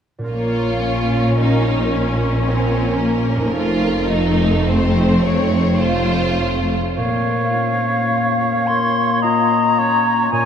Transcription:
0.19 3.59 A#2 soft
0.19 3.57 C#4 soft
0.23 3.44 F4 soft
0.23 3.55 A#4 soft
0.28 3.49 A#1 soft
0.28 3.50 A#2 soft
0.28 0.82 A#3 soft
0.28 1.34 F4 soft
0.28 1.35 C#5 soft
0.86 2.43 C#4 soft
1.38 1.92 D#4 soft
1.38 2.44 A#4 soft
1.91 3.53 C#4 soft
2.45 3.00 C4 soft
2.45 4.60 A#4 soft
3.00 3.53 A#3 soft
3.36 6.93 F2 soft
3.41 6.95 D#4 soft
3.45 7.35 F4 soft
3.50 6.77 F2 soft
3.50 7.00 A4 soft
3.54 6.77 F1 soft
3.54 5.76 A3 soft
3.54 4.08 F4 soft
4.09 4.64 D#4 soft
4.64 5.79 C4 soft
4.64 5.20 C5 medium
5.21 5.79 C#5 medium
5.77 6.74 A3 soft
5.77 6.77 F4 soft
5.77 6.76 C5 soft
6.97 10.31 A#2 soft
6.97 10.28 A#3 soft
6.97 9.18 C#5 soft
6.97 8.68 F5 soft
7.55 9.77 C#4 soft
8.11 9.23 F4 soft
8.67 10.45 A#4 soft
8.67 9.23 C6 soft
9.22 10.37 F4 soft
9.22 9.80 D#5 soft
9.22 10.30 A#5 soft
9.79 10.45 C#4 soft
9.79 10.32 C#5 soft
10.31 10.45 A#2 soft
10.31 10.45 A#3 soft
10.31 10.45 C#5 soft
10.31 10.45 G#5 soft

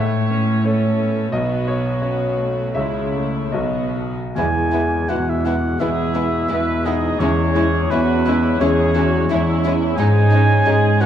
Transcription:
0.00 0.63 A2 soft
0.00 1.34 A2 soft
0.00 1.37 A2 soft
0.00 0.30 A3 soft
0.00 0.64 C#5 soft
0.00 1.77 C#5 soft
0.00 1.29 E5 medium
0.30 0.97 B3 soft
0.30 0.64 C#4 soft
0.64 2.01 C#4 soft
0.64 1.30 C#4 soft
0.64 1.33 C#4 soft
0.64 1.34 A4 soft
0.64 1.30 C#5 soft
0.99 1.66 B3 soft
1.32 2.00 B1 soft
1.32 2.79 B2 soft
1.32 2.73 B2 soft
1.32 2.01 B3 soft
1.32 2.73 F#4 soft
1.32 1.65 D#5 medium
1.68 2.36 B3 soft
1.68 2.00 C#5 medium
2.02 2.38 B3 soft
2.02 2.71 C#4 soft
2.02 3.13 C#4 soft
2.02 2.71 C#5 soft
2.38 2.76 A3 soft
2.38 2.78 B3 soft
2.74 3.52 C#2 soft
2.74 3.57 C#3 soft
2.74 3.55 C#3 soft
2.74 3.50 G#3 soft
2.74 3.14 G#3 soft
2.74 2.77 C#4 soft
2.74 3.53 E4 soft
2.74 2.77 C#5 soft
2.74 3.50 E5 soft
3.14 3.55 A3 soft
3.14 3.58 C#4 soft
3.14 3.58 C#5 soft
3.52 4.34 B1 soft
3.52 4.40 B2 soft
3.52 4.16 B2 soft
3.52 4.33 B3 soft
3.52 4.14 B3 soft
3.52 3.56 F#4 soft
3.52 4.16 F#4 soft
3.52 3.56 A4 soft
3.52 4.32 D#5 soft
3.96 4.40 F#4 soft
3.96 4.40 A4 soft
4.36 7.16 E2 soft
4.36 7.20 E2 soft
4.36 5.02 E2 soft
4.36 4.46 G#3 soft
4.36 9.95 G#3 soft
4.36 4.45 B3 soft
4.36 7.18 B3 soft
4.36 4.45 E4 soft
4.36 5.12 G#4 soft
4.36 5.11 G#5 medium
4.72 4.82 G#3 soft
4.72 5.45 B3 soft
4.72 4.82 B3 soft
4.72 4.80 E4 soft
5.09 5.73 E2 soft
5.09 6.23 B2 soft
5.09 5.17 G#3 soft
5.09 5.18 B3 soft
5.09 5.17 E4 soft
5.09 5.30 F#4 soft
5.09 9.01 G#4 soft
5.09 5.31 F#5 medium
5.29 5.47 E4 soft
5.29 5.47 E5 medium
5.45 5.53 G#3 soft
5.45 5.54 B3 soft
5.45 6.15 B3 soft
5.45 5.53 E4 soft
5.45 5.83 F#4 soft
5.45 5.81 F#5 medium
5.79 6.43 E2 soft
5.79 7.24 B2 soft
5.79 7.17 E3 soft
5.79 5.88 G#3 soft
5.79 5.88 B3 soft
5.79 7.17 B3 soft
5.79 5.87 E4 soft
5.79 6.88 E4 medium
5.79 6.47 G#4 soft
5.79 7.17 G#4 soft
5.79 6.86 E5 medium
6.14 6.23 G#3 soft
6.14 6.23 B3 soft
6.14 6.85 B3 soft
6.14 6.22 E4 soft
6.49 7.13 E2 soft
6.49 6.59 G#3 soft
6.49 6.59 B3 soft
6.49 6.57 E4 soft
6.49 6.86 B4 medium
6.85 6.93 G#3 soft
6.85 6.93 B3 soft
6.85 7.24 B3 soft
6.85 7.22 D#4 medium
6.85 6.94 E4 soft
6.85 7.91 G#4 medium
6.85 7.21 D#5 medium
7.20 9.94 E2 soft
7.20 8.60 E2 soft
7.20 7.83 E2 medium
7.20 7.29 G#3 soft
7.20 7.29 C#4 soft
7.20 7.91 C#4 medium
7.20 11.06 C#4 soft
7.20 7.29 E4 soft
7.20 7.92 C#5 medium
7.55 7.63 G#3 soft
7.55 7.64 C#4 soft
7.55 8.24 C#4 soft
7.55 7.64 E4 soft
7.90 8.53 E2 medium
7.90 9.02 E3 soft
7.90 7.99 G#3 soft
7.90 8.63 B3 medium
7.90 7.99 C#4 soft
7.90 9.29 E4 soft
7.90 8.00 E4 soft
7.90 8.26 F#4 medium
7.90 8.60 B4 medium
8.26 8.35 G#3 medium
8.26 9.63 C#4 soft
8.26 8.35 C#4 medium
8.26 8.61 E4 medium
8.26 8.34 E4 soft
8.59 9.22 E2 medium
8.59 10.01 E2 soft
8.59 8.68 G#3 medium
8.59 9.93 C#4 soft
8.59 8.68 C#4 soft
8.59 9.65 C#4 medium
8.59 9.94 E4 soft
8.59 8.69 E4 soft
8.59 9.94 G#4 soft
8.59 8.96 G#4 medium
8.59 9.62 C#5 medium
8.95 10.00 E3 soft
8.95 9.06 G#3 medium
8.95 9.05 C#4 soft
8.95 9.03 E4 soft
8.95 9.30 F#4 medium
9.29 9.90 E2 medium
9.29 9.40 G#3 soft
9.29 9.41 C#4 soft
9.29 9.37 E4 medium
9.29 10.01 E4 soft
9.29 9.97 E4 medium
9.64 9.74 G#3 medium
9.64 10.31 C#4 soft
9.64 9.74 C#4 medium
9.64 9.72 E4 medium
9.96 11.06 G#2 medium
9.96 10.59 G#2 medium
9.96 11.06 G#3 medium
9.96 10.08 G#3 medium
9.96 10.08 C#4 medium
9.96 10.06 D#4 medium
9.96 10.67 D#4 medium
9.96 11.03 G#4 medium
9.96 11.02 G#5 loud
10.31 10.42 G#3 medium
10.31 10.99 C#4 soft
10.31 10.42 C#4 soft
10.31 10.39 D#4 soft
10.66 11.06 G#2 medium
10.66 10.77 G#3 soft
10.66 10.76 C#4 soft
10.66 10.74 D#4 soft
10.66 11.06 D#4 soft
10.66 11.06 G#4 soft
10.66 11.02 G#4 medium
11.01 11.06 C#4 soft
11.01 11.06 D#4 soft
11.01 11.06 F#4 medium
11.01 11.06 B4 medium
11.01 11.06 F#5 medium

